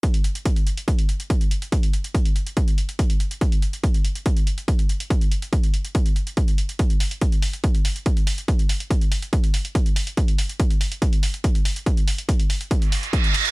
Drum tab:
HH |xxxxxxxxxxxxxxxx|xxxxxxxxxxxxxxxx|xxxxxxxxxxxxxxxx|xxxxxxxxxxxxxxxx|
BD |o---o---o---o---|o---o---o---o---|o---o---o---o---|o---o---o---o---|

HH |xxoxxxoxxxoxxxox|xxoxxxoxxxoxxxox|xxoxxxoxxxoxxxox|xxoxxxoxxxoxxxox|
BD |o---o---o---o---|o---o---o---o---|o---o---o---o---|o---o---o---o---|